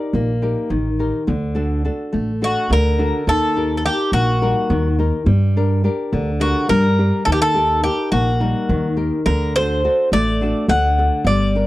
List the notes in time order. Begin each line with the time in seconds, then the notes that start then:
Already playing: D#4 G4 A#4 D5
0.13 A#1 A#3
0.42 D#4 G4 A#4
0.70 A1 D#3
0.99 D#4 G4 A#4
1.27 D2 D3
1.55 D4 F#4 A4
1.85 D4 F#4 A4
2.13 A1 A3
2.42 D4 F#4 A4
2.70 D2 D3 A#4
2.98 D4 F#4 A4
3.27 D#2 D#3 A4
3.56 D#4 G4 A#4
3.77 A4
3.84 D#4 G4 A#4
4.12 A#1 A#3 F#4
4.42 G3 D#4 A#4
4.70 D#2 D#3
4.99 D#4 G4 A#4
5.26 G2 G3
5.57 D4 G4 A#4
5.84 D4 G4 A#4
6.13 D2 D3
6.40 D4 F#4 G4 A#4
6.68 G2 G3 A#4
6.98 D4 G4 A#4
7.25 D#2 D#3 A4
7.32 G4
7.42 A4
7.54 D#4 G4 A#4
7.83 D#4 G4 A#4
8.12 A#1 A#3 F#4
8.40 G3 D#4 A#4
8.69 D#2 D#3
8.97 D#4 G4 A#4
9.26 D2 D3 A#4
9.56 D4 F#4 A4 C5
9.84 D4 F#4 A4
10.12 A1 A3 D5
10.41 D4 F#4 A4
10.68 D2 D3 F#5
10.98 D4 F#4 A4
11.25 G1 G3 D5
11.55 D4 G4 A#4